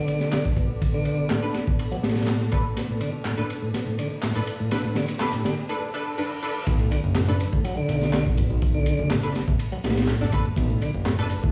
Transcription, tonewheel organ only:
0.00 0.44 D3 loud
0.57 0.69 B2 medium
0.94 1.29 D3 loud
1.30 1.40 A2 medium
1.91 1.97 F#3 loud
2.03 2.51 A2 medium
2.52 2.62 B2 medium
2.76 2.88 B2 medium
2.89 3.00 A2 medium
3.01 3.10 D3 medium
3.25 3.35 A2 medium
3.38 3.43 A2 medium
3.62 3.72 A2 medium
3.74 3.86 B2 medium
3.87 3.98 A2 medium
3.99 4.08 D3 medium
4.23 4.32 A2 medium
4.36 4.41 A2 loud
4.60 4.70 A2 loud
4.72 4.83 B2 medium
4.84 4.96 A2 medium
4.96 5.06 D3 medium
5.21 5.32 B2 medium
5.33 5.44 A2 medium
5.45 5.54 D3 medium
6.67 6.78 B2 medium
6.80 6.91 A2 medium
6.91 7.00 D3 medium
7.16 7.25 A2 medium
7.28 7.34 A2 loud
7.52 7.64 A2 medium
7.64 7.76 F#3 medium
7.77 8.25 D3 loud
8.38 8.50 B2 medium
8.74 9.10 D3 loud
9.11 9.20 A2 medium
9.72 9.77 F#3 medium
9.84 10.32 A2 medium
10.33 10.42 B2 medium
10.57 10.68 B2 medium
10.70 10.81 A2 medium
10.81 10.91 D3 medium
11.06 11.15 A2 medium
11.18 11.24 A2 loud
11.43 11.52 A2 loud

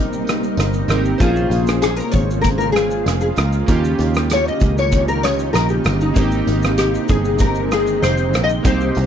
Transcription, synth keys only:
0.00 0.84 C4 medium
0.00 0.85 D#4 medium
0.00 0.85 G4 medium
0.00 0.86 A#4 medium
0.88 1.20 C4 medium
0.88 1.20 D#4 medium
0.88 1.20 G4 medium
0.88 1.21 A#4 medium
1.18 3.64 C#4 medium
1.18 3.65 F4 medium
1.18 3.63 C5 medium
1.23 3.66 G#4 medium
3.66 6.12 A#3 medium
3.66 6.13 C#4 medium
3.66 6.13 F4 medium
3.71 6.14 G4 medium
6.14 8.60 A#3 medium
6.14 8.61 C4 medium
6.14 8.61 D#4 medium
6.19 8.62 G4 medium
8.63 9.06 A#3 medium
8.63 9.06 C4 medium
8.63 9.06 D#4 medium
8.68 9.06 G4 medium

